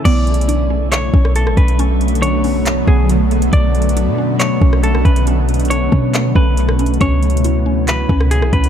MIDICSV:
0, 0, Header, 1, 7, 480
1, 0, Start_track
1, 0, Key_signature, 2, "minor"
1, 0, Tempo, 434783
1, 57, Time_signature, 4, 2, 24, 8
1, 9596, End_track
2, 0, Start_track
2, 0, Title_t, "Clean electric guitar"
2, 0, Program_c, 0, 27
2, 56, Note_on_c, 0, 74, 105
2, 973, Note_off_c, 0, 74, 0
2, 1016, Note_on_c, 0, 73, 93
2, 1468, Note_off_c, 0, 73, 0
2, 1500, Note_on_c, 0, 69, 104
2, 1727, Note_off_c, 0, 69, 0
2, 1736, Note_on_c, 0, 71, 86
2, 1965, Note_off_c, 0, 71, 0
2, 2453, Note_on_c, 0, 73, 91
2, 3132, Note_off_c, 0, 73, 0
2, 3176, Note_on_c, 0, 68, 77
2, 3405, Note_off_c, 0, 68, 0
2, 3898, Note_on_c, 0, 74, 100
2, 4814, Note_off_c, 0, 74, 0
2, 4853, Note_on_c, 0, 73, 93
2, 5306, Note_off_c, 0, 73, 0
2, 5339, Note_on_c, 0, 69, 96
2, 5566, Note_off_c, 0, 69, 0
2, 5576, Note_on_c, 0, 71, 78
2, 5804, Note_off_c, 0, 71, 0
2, 6296, Note_on_c, 0, 73, 87
2, 6974, Note_off_c, 0, 73, 0
2, 7021, Note_on_c, 0, 71, 79
2, 7696, Note_off_c, 0, 71, 0
2, 7741, Note_on_c, 0, 73, 101
2, 8655, Note_off_c, 0, 73, 0
2, 8706, Note_on_c, 0, 71, 99
2, 9153, Note_off_c, 0, 71, 0
2, 9176, Note_on_c, 0, 68, 106
2, 9405, Note_off_c, 0, 68, 0
2, 9417, Note_on_c, 0, 71, 83
2, 9596, Note_off_c, 0, 71, 0
2, 9596, End_track
3, 0, Start_track
3, 0, Title_t, "Synth texture"
3, 0, Program_c, 1, 99
3, 60, Note_on_c, 1, 62, 74
3, 61, Note_on_c, 1, 57, 85
3, 61, Note_on_c, 1, 85, 90
3, 3861, Note_off_c, 1, 85, 0
3, 3896, Note_on_c, 1, 71, 93
3, 7695, Note_off_c, 1, 57, 0
3, 7695, Note_off_c, 1, 62, 0
3, 7698, Note_off_c, 1, 71, 0
3, 7739, Note_on_c, 1, 59, 84
3, 7739, Note_on_c, 1, 64, 77
3, 7739, Note_on_c, 1, 73, 90
3, 9596, Note_off_c, 1, 59, 0
3, 9596, Note_off_c, 1, 64, 0
3, 9596, Note_off_c, 1, 73, 0
3, 9596, End_track
4, 0, Start_track
4, 0, Title_t, "Synth pluck"
4, 0, Program_c, 2, 84
4, 61, Note_on_c, 2, 59, 101
4, 531, Note_on_c, 2, 62, 80
4, 776, Note_on_c, 2, 61, 74
4, 1241, Note_off_c, 2, 61, 0
4, 1254, Note_on_c, 2, 61, 83
4, 1499, Note_off_c, 2, 59, 0
4, 1724, Note_off_c, 2, 61, 0
4, 1737, Note_on_c, 2, 61, 83
4, 1967, Note_off_c, 2, 61, 0
4, 1974, Note_off_c, 2, 62, 0
4, 1980, Note_on_c, 2, 61, 109
4, 2457, Note_on_c, 2, 62, 85
4, 2684, Note_off_c, 2, 61, 0
4, 2698, Note_on_c, 2, 61, 78
4, 3183, Note_on_c, 2, 59, 84
4, 3661, Note_on_c, 2, 57, 83
4, 3897, Note_off_c, 2, 62, 0
4, 4137, Note_off_c, 2, 61, 0
4, 4378, Note_on_c, 2, 62, 91
4, 4618, Note_on_c, 2, 61, 81
4, 4620, Note_off_c, 2, 59, 0
4, 5083, Note_off_c, 2, 61, 0
4, 5096, Note_on_c, 2, 61, 79
4, 5099, Note_off_c, 2, 57, 0
4, 5564, Note_off_c, 2, 61, 0
4, 5577, Note_on_c, 2, 61, 81
4, 5811, Note_off_c, 2, 61, 0
4, 5818, Note_off_c, 2, 62, 0
4, 5824, Note_on_c, 2, 61, 93
4, 6297, Note_on_c, 2, 62, 88
4, 6521, Note_off_c, 2, 61, 0
4, 6535, Note_on_c, 2, 61, 78
4, 7003, Note_off_c, 2, 61, 0
4, 7016, Note_on_c, 2, 61, 82
4, 7484, Note_off_c, 2, 61, 0
4, 7497, Note_on_c, 2, 61, 77
4, 7732, Note_off_c, 2, 61, 0
4, 7737, Note_off_c, 2, 62, 0
4, 7746, Note_on_c, 2, 61, 104
4, 8219, Note_on_c, 2, 64, 84
4, 8443, Note_off_c, 2, 61, 0
4, 8456, Note_on_c, 2, 61, 78
4, 8928, Note_off_c, 2, 61, 0
4, 8941, Note_on_c, 2, 61, 80
4, 9408, Note_off_c, 2, 61, 0
4, 9421, Note_on_c, 2, 61, 83
4, 9596, Note_off_c, 2, 61, 0
4, 9596, Note_off_c, 2, 64, 0
4, 9596, End_track
5, 0, Start_track
5, 0, Title_t, "Ambient pad"
5, 0, Program_c, 3, 92
5, 56, Note_on_c, 3, 50, 89
5, 56, Note_on_c, 3, 57, 74
5, 57, Note_on_c, 3, 54, 79
5, 57, Note_on_c, 3, 59, 75
5, 58, Note_on_c, 3, 47, 82
5, 7693, Note_off_c, 3, 50, 0
5, 7693, Note_off_c, 3, 54, 0
5, 7693, Note_off_c, 3, 57, 0
5, 7693, Note_off_c, 3, 59, 0
5, 7739, Note_on_c, 3, 52, 75
5, 7739, Note_on_c, 3, 64, 95
5, 7740, Note_on_c, 3, 59, 72
5, 9596, Note_off_c, 3, 47, 0
5, 9596, Note_off_c, 3, 52, 0
5, 9596, Note_off_c, 3, 59, 0
5, 9596, Note_off_c, 3, 64, 0
5, 9596, End_track
6, 0, Start_track
6, 0, Title_t, "808-style bass"
6, 0, Program_c, 4, 38
6, 57, Note_on_c, 4, 35, 107
6, 1213, Note_off_c, 4, 35, 0
6, 1254, Note_on_c, 4, 35, 107
6, 1615, Note_on_c, 4, 33, 97
6, 1632, Note_off_c, 4, 35, 0
6, 1730, Note_off_c, 4, 33, 0
6, 1735, Note_on_c, 4, 35, 107
6, 3132, Note_off_c, 4, 35, 0
6, 3174, Note_on_c, 4, 35, 111
6, 3867, Note_off_c, 4, 35, 0
6, 3895, Note_on_c, 4, 35, 104
6, 4496, Note_on_c, 4, 47, 98
6, 4512, Note_off_c, 4, 35, 0
6, 5066, Note_off_c, 4, 47, 0
6, 5095, Note_on_c, 4, 35, 110
6, 5557, Note_off_c, 4, 35, 0
6, 5576, Note_on_c, 4, 35, 111
6, 6498, Note_off_c, 4, 35, 0
6, 6539, Note_on_c, 4, 47, 106
6, 6999, Note_off_c, 4, 47, 0
6, 7016, Note_on_c, 4, 35, 110
6, 7708, Note_off_c, 4, 35, 0
6, 7738, Note_on_c, 4, 37, 106
6, 8893, Note_off_c, 4, 37, 0
6, 8936, Note_on_c, 4, 37, 114
6, 9296, Note_on_c, 4, 35, 101
6, 9313, Note_off_c, 4, 37, 0
6, 9411, Note_off_c, 4, 35, 0
6, 9416, Note_on_c, 4, 37, 107
6, 9596, Note_off_c, 4, 37, 0
6, 9596, End_track
7, 0, Start_track
7, 0, Title_t, "Drums"
7, 57, Note_on_c, 9, 36, 113
7, 58, Note_on_c, 9, 42, 76
7, 58, Note_on_c, 9, 49, 103
7, 167, Note_off_c, 9, 36, 0
7, 168, Note_off_c, 9, 42, 0
7, 168, Note_off_c, 9, 49, 0
7, 299, Note_on_c, 9, 42, 42
7, 377, Note_off_c, 9, 42, 0
7, 377, Note_on_c, 9, 42, 59
7, 457, Note_off_c, 9, 42, 0
7, 457, Note_on_c, 9, 42, 72
7, 539, Note_off_c, 9, 42, 0
7, 539, Note_on_c, 9, 42, 89
7, 649, Note_off_c, 9, 42, 0
7, 1016, Note_on_c, 9, 42, 90
7, 1022, Note_on_c, 9, 39, 125
7, 1126, Note_off_c, 9, 42, 0
7, 1132, Note_off_c, 9, 39, 0
7, 1255, Note_on_c, 9, 36, 94
7, 1365, Note_off_c, 9, 36, 0
7, 1379, Note_on_c, 9, 37, 93
7, 1490, Note_off_c, 9, 37, 0
7, 1496, Note_on_c, 9, 42, 83
7, 1607, Note_off_c, 9, 42, 0
7, 1621, Note_on_c, 9, 37, 91
7, 1732, Note_off_c, 9, 37, 0
7, 1735, Note_on_c, 9, 36, 88
7, 1736, Note_on_c, 9, 42, 44
7, 1845, Note_off_c, 9, 36, 0
7, 1847, Note_off_c, 9, 42, 0
7, 1858, Note_on_c, 9, 42, 74
7, 1968, Note_off_c, 9, 42, 0
7, 1977, Note_on_c, 9, 42, 77
7, 2088, Note_off_c, 9, 42, 0
7, 2218, Note_on_c, 9, 42, 42
7, 2298, Note_off_c, 9, 42, 0
7, 2298, Note_on_c, 9, 42, 59
7, 2377, Note_off_c, 9, 42, 0
7, 2377, Note_on_c, 9, 42, 73
7, 2460, Note_off_c, 9, 42, 0
7, 2460, Note_on_c, 9, 42, 87
7, 2570, Note_off_c, 9, 42, 0
7, 2694, Note_on_c, 9, 46, 53
7, 2804, Note_off_c, 9, 46, 0
7, 2935, Note_on_c, 9, 42, 98
7, 2941, Note_on_c, 9, 39, 127
7, 3046, Note_off_c, 9, 42, 0
7, 3052, Note_off_c, 9, 39, 0
7, 3174, Note_on_c, 9, 36, 90
7, 3284, Note_off_c, 9, 36, 0
7, 3417, Note_on_c, 9, 42, 85
7, 3527, Note_off_c, 9, 42, 0
7, 3656, Note_on_c, 9, 42, 44
7, 3767, Note_off_c, 9, 42, 0
7, 3776, Note_on_c, 9, 42, 77
7, 3887, Note_off_c, 9, 42, 0
7, 3895, Note_on_c, 9, 42, 75
7, 3896, Note_on_c, 9, 36, 117
7, 4005, Note_off_c, 9, 42, 0
7, 4006, Note_off_c, 9, 36, 0
7, 4136, Note_on_c, 9, 42, 43
7, 4216, Note_off_c, 9, 42, 0
7, 4216, Note_on_c, 9, 42, 57
7, 4296, Note_off_c, 9, 42, 0
7, 4296, Note_on_c, 9, 42, 71
7, 4379, Note_off_c, 9, 42, 0
7, 4379, Note_on_c, 9, 42, 92
7, 4490, Note_off_c, 9, 42, 0
7, 4856, Note_on_c, 9, 42, 95
7, 4862, Note_on_c, 9, 39, 127
7, 4966, Note_off_c, 9, 42, 0
7, 4972, Note_off_c, 9, 39, 0
7, 5095, Note_on_c, 9, 36, 99
7, 5206, Note_off_c, 9, 36, 0
7, 5220, Note_on_c, 9, 37, 93
7, 5331, Note_off_c, 9, 37, 0
7, 5338, Note_on_c, 9, 42, 80
7, 5448, Note_off_c, 9, 42, 0
7, 5462, Note_on_c, 9, 37, 89
7, 5572, Note_off_c, 9, 37, 0
7, 5576, Note_on_c, 9, 36, 91
7, 5579, Note_on_c, 9, 42, 47
7, 5687, Note_off_c, 9, 36, 0
7, 5690, Note_off_c, 9, 42, 0
7, 5699, Note_on_c, 9, 42, 75
7, 5809, Note_off_c, 9, 42, 0
7, 5817, Note_on_c, 9, 42, 75
7, 5928, Note_off_c, 9, 42, 0
7, 6057, Note_on_c, 9, 42, 60
7, 6117, Note_off_c, 9, 42, 0
7, 6117, Note_on_c, 9, 42, 57
7, 6177, Note_off_c, 9, 42, 0
7, 6177, Note_on_c, 9, 42, 61
7, 6237, Note_off_c, 9, 42, 0
7, 6237, Note_on_c, 9, 42, 60
7, 6301, Note_off_c, 9, 42, 0
7, 6301, Note_on_c, 9, 42, 86
7, 6411, Note_off_c, 9, 42, 0
7, 6539, Note_on_c, 9, 36, 96
7, 6650, Note_off_c, 9, 36, 0
7, 6778, Note_on_c, 9, 42, 92
7, 6784, Note_on_c, 9, 39, 120
7, 6888, Note_off_c, 9, 42, 0
7, 6894, Note_off_c, 9, 39, 0
7, 7016, Note_on_c, 9, 36, 95
7, 7126, Note_off_c, 9, 36, 0
7, 7258, Note_on_c, 9, 42, 81
7, 7368, Note_off_c, 9, 42, 0
7, 7381, Note_on_c, 9, 37, 97
7, 7492, Note_off_c, 9, 37, 0
7, 7498, Note_on_c, 9, 42, 76
7, 7577, Note_off_c, 9, 42, 0
7, 7577, Note_on_c, 9, 42, 61
7, 7658, Note_off_c, 9, 42, 0
7, 7658, Note_on_c, 9, 42, 42
7, 7736, Note_off_c, 9, 42, 0
7, 7736, Note_on_c, 9, 42, 73
7, 7737, Note_on_c, 9, 36, 112
7, 7847, Note_off_c, 9, 42, 0
7, 7848, Note_off_c, 9, 36, 0
7, 7977, Note_on_c, 9, 42, 43
7, 8057, Note_off_c, 9, 42, 0
7, 8057, Note_on_c, 9, 42, 55
7, 8136, Note_off_c, 9, 42, 0
7, 8136, Note_on_c, 9, 42, 73
7, 8219, Note_off_c, 9, 42, 0
7, 8219, Note_on_c, 9, 42, 90
7, 8329, Note_off_c, 9, 42, 0
7, 8696, Note_on_c, 9, 42, 95
7, 8702, Note_on_c, 9, 39, 127
7, 8806, Note_off_c, 9, 42, 0
7, 8812, Note_off_c, 9, 39, 0
7, 8936, Note_on_c, 9, 36, 91
7, 9046, Note_off_c, 9, 36, 0
7, 9059, Note_on_c, 9, 37, 93
7, 9169, Note_off_c, 9, 37, 0
7, 9176, Note_on_c, 9, 42, 86
7, 9287, Note_off_c, 9, 42, 0
7, 9300, Note_on_c, 9, 37, 91
7, 9410, Note_off_c, 9, 37, 0
7, 9415, Note_on_c, 9, 36, 93
7, 9416, Note_on_c, 9, 42, 47
7, 9526, Note_off_c, 9, 36, 0
7, 9526, Note_off_c, 9, 42, 0
7, 9536, Note_on_c, 9, 42, 78
7, 9596, Note_off_c, 9, 42, 0
7, 9596, End_track
0, 0, End_of_file